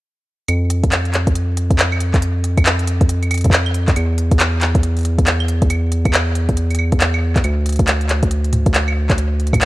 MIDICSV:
0, 0, Header, 1, 3, 480
1, 0, Start_track
1, 0, Key_signature, -1, "minor"
1, 0, Tempo, 434783
1, 534, Time_signature, 4, 2, 24, 8
1, 10655, End_track
2, 0, Start_track
2, 0, Title_t, "Analog synth bass"
2, 0, Program_c, 0, 38
2, 534, Note_on_c, 0, 41, 84
2, 4356, Note_off_c, 0, 41, 0
2, 4375, Note_on_c, 0, 40, 90
2, 8196, Note_off_c, 0, 40, 0
2, 8215, Note_on_c, 0, 38, 84
2, 10655, Note_off_c, 0, 38, 0
2, 10655, End_track
3, 0, Start_track
3, 0, Title_t, "Drums"
3, 534, Note_on_c, 9, 42, 76
3, 534, Note_on_c, 9, 75, 63
3, 644, Note_off_c, 9, 42, 0
3, 644, Note_off_c, 9, 75, 0
3, 774, Note_on_c, 9, 42, 81
3, 884, Note_off_c, 9, 42, 0
3, 923, Note_on_c, 9, 36, 111
3, 923, Note_on_c, 9, 42, 50
3, 1014, Note_off_c, 9, 42, 0
3, 1014, Note_on_c, 9, 39, 113
3, 1014, Note_on_c, 9, 42, 77
3, 1033, Note_off_c, 9, 36, 0
3, 1124, Note_off_c, 9, 39, 0
3, 1124, Note_off_c, 9, 42, 0
3, 1162, Note_on_c, 9, 42, 37
3, 1254, Note_off_c, 9, 42, 0
3, 1254, Note_on_c, 9, 39, 61
3, 1254, Note_on_c, 9, 42, 81
3, 1365, Note_off_c, 9, 39, 0
3, 1365, Note_off_c, 9, 42, 0
3, 1402, Note_on_c, 9, 36, 103
3, 1403, Note_on_c, 9, 42, 53
3, 1495, Note_off_c, 9, 42, 0
3, 1495, Note_on_c, 9, 42, 81
3, 1513, Note_off_c, 9, 36, 0
3, 1605, Note_off_c, 9, 42, 0
3, 1735, Note_on_c, 9, 42, 77
3, 1845, Note_off_c, 9, 42, 0
3, 1882, Note_on_c, 9, 36, 115
3, 1884, Note_on_c, 9, 42, 51
3, 1974, Note_off_c, 9, 42, 0
3, 1974, Note_on_c, 9, 39, 112
3, 1974, Note_on_c, 9, 42, 73
3, 1993, Note_off_c, 9, 36, 0
3, 2085, Note_off_c, 9, 39, 0
3, 2085, Note_off_c, 9, 42, 0
3, 2123, Note_on_c, 9, 75, 76
3, 2213, Note_on_c, 9, 42, 82
3, 2233, Note_off_c, 9, 75, 0
3, 2324, Note_off_c, 9, 42, 0
3, 2362, Note_on_c, 9, 36, 115
3, 2362, Note_on_c, 9, 39, 59
3, 2362, Note_on_c, 9, 42, 53
3, 2453, Note_off_c, 9, 42, 0
3, 2453, Note_on_c, 9, 42, 80
3, 2473, Note_off_c, 9, 36, 0
3, 2473, Note_off_c, 9, 39, 0
3, 2563, Note_off_c, 9, 42, 0
3, 2693, Note_on_c, 9, 42, 82
3, 2804, Note_off_c, 9, 42, 0
3, 2843, Note_on_c, 9, 36, 100
3, 2843, Note_on_c, 9, 42, 51
3, 2843, Note_on_c, 9, 75, 58
3, 2934, Note_off_c, 9, 42, 0
3, 2934, Note_on_c, 9, 39, 122
3, 2934, Note_on_c, 9, 42, 80
3, 2953, Note_off_c, 9, 36, 0
3, 2953, Note_off_c, 9, 75, 0
3, 3045, Note_off_c, 9, 39, 0
3, 3045, Note_off_c, 9, 42, 0
3, 3082, Note_on_c, 9, 42, 38
3, 3174, Note_off_c, 9, 42, 0
3, 3174, Note_on_c, 9, 42, 85
3, 3284, Note_off_c, 9, 42, 0
3, 3322, Note_on_c, 9, 42, 50
3, 3323, Note_on_c, 9, 36, 118
3, 3413, Note_off_c, 9, 42, 0
3, 3413, Note_on_c, 9, 42, 83
3, 3433, Note_off_c, 9, 36, 0
3, 3524, Note_off_c, 9, 42, 0
3, 3562, Note_on_c, 9, 42, 40
3, 3562, Note_on_c, 9, 75, 35
3, 3653, Note_off_c, 9, 42, 0
3, 3653, Note_off_c, 9, 75, 0
3, 3653, Note_on_c, 9, 42, 69
3, 3653, Note_on_c, 9, 75, 73
3, 3690, Note_off_c, 9, 42, 0
3, 3690, Note_on_c, 9, 42, 60
3, 3727, Note_off_c, 9, 42, 0
3, 3727, Note_on_c, 9, 42, 49
3, 3763, Note_off_c, 9, 75, 0
3, 3764, Note_off_c, 9, 42, 0
3, 3764, Note_on_c, 9, 42, 40
3, 3802, Note_off_c, 9, 42, 0
3, 3802, Note_on_c, 9, 42, 53
3, 3803, Note_on_c, 9, 36, 53
3, 3814, Note_off_c, 9, 36, 0
3, 3814, Note_on_c, 9, 36, 72
3, 3864, Note_off_c, 9, 36, 0
3, 3864, Note_on_c, 9, 36, 91
3, 3893, Note_off_c, 9, 42, 0
3, 3893, Note_on_c, 9, 39, 110
3, 3893, Note_on_c, 9, 42, 72
3, 3974, Note_off_c, 9, 36, 0
3, 4004, Note_off_c, 9, 39, 0
3, 4004, Note_off_c, 9, 42, 0
3, 4042, Note_on_c, 9, 75, 76
3, 4133, Note_on_c, 9, 42, 81
3, 4153, Note_off_c, 9, 75, 0
3, 4243, Note_off_c, 9, 42, 0
3, 4283, Note_on_c, 9, 36, 110
3, 4283, Note_on_c, 9, 39, 61
3, 4283, Note_on_c, 9, 42, 54
3, 4374, Note_off_c, 9, 42, 0
3, 4374, Note_on_c, 9, 42, 73
3, 4374, Note_on_c, 9, 75, 56
3, 4393, Note_off_c, 9, 39, 0
3, 4394, Note_off_c, 9, 36, 0
3, 4484, Note_off_c, 9, 42, 0
3, 4484, Note_off_c, 9, 75, 0
3, 4614, Note_on_c, 9, 42, 77
3, 4725, Note_off_c, 9, 42, 0
3, 4763, Note_on_c, 9, 42, 53
3, 4764, Note_on_c, 9, 36, 114
3, 4854, Note_off_c, 9, 42, 0
3, 4854, Note_on_c, 9, 39, 122
3, 4854, Note_on_c, 9, 42, 76
3, 4874, Note_off_c, 9, 36, 0
3, 4965, Note_off_c, 9, 39, 0
3, 4965, Note_off_c, 9, 42, 0
3, 5094, Note_on_c, 9, 39, 65
3, 5094, Note_on_c, 9, 42, 80
3, 5204, Note_off_c, 9, 39, 0
3, 5204, Note_off_c, 9, 42, 0
3, 5243, Note_on_c, 9, 42, 50
3, 5244, Note_on_c, 9, 36, 118
3, 5335, Note_off_c, 9, 42, 0
3, 5335, Note_on_c, 9, 42, 77
3, 5354, Note_off_c, 9, 36, 0
3, 5445, Note_off_c, 9, 42, 0
3, 5483, Note_on_c, 9, 42, 36
3, 5506, Note_off_c, 9, 42, 0
3, 5506, Note_on_c, 9, 42, 29
3, 5530, Note_off_c, 9, 42, 0
3, 5530, Note_on_c, 9, 42, 23
3, 5553, Note_off_c, 9, 42, 0
3, 5553, Note_on_c, 9, 42, 18
3, 5575, Note_off_c, 9, 42, 0
3, 5575, Note_on_c, 9, 42, 75
3, 5686, Note_off_c, 9, 42, 0
3, 5724, Note_on_c, 9, 36, 104
3, 5725, Note_on_c, 9, 42, 52
3, 5815, Note_off_c, 9, 42, 0
3, 5815, Note_on_c, 9, 39, 113
3, 5815, Note_on_c, 9, 42, 78
3, 5834, Note_off_c, 9, 36, 0
3, 5925, Note_off_c, 9, 39, 0
3, 5925, Note_off_c, 9, 42, 0
3, 5964, Note_on_c, 9, 75, 72
3, 6054, Note_on_c, 9, 42, 75
3, 6074, Note_off_c, 9, 75, 0
3, 6164, Note_off_c, 9, 42, 0
3, 6203, Note_on_c, 9, 42, 51
3, 6204, Note_on_c, 9, 36, 120
3, 6293, Note_off_c, 9, 42, 0
3, 6293, Note_on_c, 9, 42, 75
3, 6293, Note_on_c, 9, 75, 56
3, 6314, Note_off_c, 9, 36, 0
3, 6404, Note_off_c, 9, 42, 0
3, 6404, Note_off_c, 9, 75, 0
3, 6533, Note_on_c, 9, 42, 75
3, 6644, Note_off_c, 9, 42, 0
3, 6683, Note_on_c, 9, 36, 119
3, 6683, Note_on_c, 9, 42, 48
3, 6683, Note_on_c, 9, 75, 54
3, 6774, Note_off_c, 9, 42, 0
3, 6774, Note_on_c, 9, 39, 124
3, 6774, Note_on_c, 9, 42, 76
3, 6793, Note_off_c, 9, 75, 0
3, 6794, Note_off_c, 9, 36, 0
3, 6884, Note_off_c, 9, 39, 0
3, 6884, Note_off_c, 9, 42, 0
3, 7014, Note_on_c, 9, 42, 78
3, 7124, Note_off_c, 9, 42, 0
3, 7163, Note_on_c, 9, 36, 103
3, 7163, Note_on_c, 9, 42, 50
3, 7253, Note_off_c, 9, 42, 0
3, 7253, Note_on_c, 9, 42, 74
3, 7274, Note_off_c, 9, 36, 0
3, 7364, Note_off_c, 9, 42, 0
3, 7402, Note_on_c, 9, 42, 35
3, 7402, Note_on_c, 9, 75, 35
3, 7448, Note_off_c, 9, 42, 0
3, 7448, Note_on_c, 9, 42, 76
3, 7493, Note_off_c, 9, 75, 0
3, 7493, Note_on_c, 9, 75, 71
3, 7559, Note_off_c, 9, 42, 0
3, 7604, Note_off_c, 9, 75, 0
3, 7642, Note_on_c, 9, 42, 51
3, 7643, Note_on_c, 9, 36, 124
3, 7734, Note_off_c, 9, 42, 0
3, 7734, Note_on_c, 9, 39, 112
3, 7734, Note_on_c, 9, 42, 71
3, 7754, Note_off_c, 9, 36, 0
3, 7844, Note_off_c, 9, 39, 0
3, 7844, Note_off_c, 9, 42, 0
3, 7883, Note_on_c, 9, 75, 70
3, 7993, Note_off_c, 9, 75, 0
3, 8123, Note_on_c, 9, 36, 123
3, 8124, Note_on_c, 9, 39, 60
3, 8124, Note_on_c, 9, 42, 51
3, 8214, Note_off_c, 9, 42, 0
3, 8214, Note_on_c, 9, 42, 73
3, 8214, Note_on_c, 9, 75, 54
3, 8234, Note_off_c, 9, 36, 0
3, 8235, Note_off_c, 9, 39, 0
3, 8325, Note_off_c, 9, 42, 0
3, 8325, Note_off_c, 9, 75, 0
3, 8455, Note_on_c, 9, 42, 68
3, 8492, Note_off_c, 9, 42, 0
3, 8492, Note_on_c, 9, 42, 60
3, 8528, Note_off_c, 9, 42, 0
3, 8528, Note_on_c, 9, 42, 46
3, 8565, Note_off_c, 9, 42, 0
3, 8565, Note_on_c, 9, 42, 40
3, 8603, Note_off_c, 9, 42, 0
3, 8603, Note_on_c, 9, 36, 113
3, 8603, Note_on_c, 9, 42, 48
3, 8694, Note_off_c, 9, 42, 0
3, 8694, Note_on_c, 9, 39, 112
3, 8694, Note_on_c, 9, 42, 72
3, 8714, Note_off_c, 9, 36, 0
3, 8805, Note_off_c, 9, 39, 0
3, 8805, Note_off_c, 9, 42, 0
3, 8843, Note_on_c, 9, 42, 37
3, 8934, Note_off_c, 9, 42, 0
3, 8934, Note_on_c, 9, 39, 61
3, 8934, Note_on_c, 9, 42, 75
3, 9044, Note_off_c, 9, 39, 0
3, 9044, Note_off_c, 9, 42, 0
3, 9082, Note_on_c, 9, 42, 48
3, 9083, Note_on_c, 9, 36, 99
3, 9174, Note_off_c, 9, 42, 0
3, 9174, Note_on_c, 9, 42, 77
3, 9194, Note_off_c, 9, 36, 0
3, 9284, Note_off_c, 9, 42, 0
3, 9322, Note_on_c, 9, 42, 35
3, 9414, Note_off_c, 9, 42, 0
3, 9414, Note_on_c, 9, 42, 72
3, 9414, Note_on_c, 9, 45, 82
3, 9524, Note_off_c, 9, 42, 0
3, 9524, Note_off_c, 9, 45, 0
3, 9562, Note_on_c, 9, 42, 48
3, 9564, Note_on_c, 9, 36, 120
3, 9654, Note_off_c, 9, 42, 0
3, 9654, Note_on_c, 9, 39, 110
3, 9654, Note_on_c, 9, 42, 72
3, 9674, Note_off_c, 9, 36, 0
3, 9764, Note_off_c, 9, 39, 0
3, 9764, Note_off_c, 9, 42, 0
3, 9802, Note_on_c, 9, 75, 70
3, 9912, Note_off_c, 9, 75, 0
3, 10043, Note_on_c, 9, 39, 60
3, 10043, Note_on_c, 9, 42, 51
3, 10044, Note_on_c, 9, 36, 117
3, 10135, Note_off_c, 9, 42, 0
3, 10135, Note_on_c, 9, 42, 73
3, 10153, Note_off_c, 9, 39, 0
3, 10154, Note_off_c, 9, 36, 0
3, 10245, Note_off_c, 9, 42, 0
3, 10374, Note_on_c, 9, 42, 33
3, 10454, Note_off_c, 9, 42, 0
3, 10454, Note_on_c, 9, 42, 47
3, 10523, Note_on_c, 9, 36, 98
3, 10523, Note_on_c, 9, 45, 90
3, 10523, Note_on_c, 9, 75, 55
3, 10534, Note_off_c, 9, 42, 0
3, 10534, Note_on_c, 9, 42, 58
3, 10614, Note_off_c, 9, 42, 0
3, 10614, Note_on_c, 9, 39, 113
3, 10614, Note_on_c, 9, 42, 76
3, 10633, Note_off_c, 9, 45, 0
3, 10633, Note_off_c, 9, 75, 0
3, 10634, Note_off_c, 9, 36, 0
3, 10655, Note_off_c, 9, 39, 0
3, 10655, Note_off_c, 9, 42, 0
3, 10655, End_track
0, 0, End_of_file